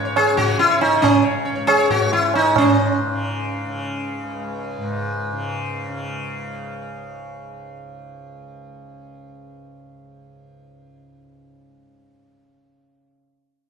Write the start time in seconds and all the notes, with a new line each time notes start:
Already playing: C#2 G#2 C#3
0.05 C#5
0.16 G#4, tabla na
0.26 C#5
0.34 C#3 F#4, tabla tin, tabla ge
0.48 C#5
0.59 E4, tabla te
0.70 C#5
0.81 D#4, tabla na
0.89 C#3 C#5
1.02 C#4, tabla na, tabla ge
1.24 C#5
1.45 C#2 C#5
1.55 C#5
1.67 G#4, tabla na
1.78 C#5
1.90 F#4, tabla tin, tabla ge
2.00 G#2 C#5
2.12 E4, tabla te
2.22 C#5
2.34 D#4, tabla na
2.43 C#5
2.55 G#2 C#4, tabla na, tabla ge
3.10 C#3
3.66 C#3
4.23 C#2
4.77 G#2
5.32 C#3
5.88 C#3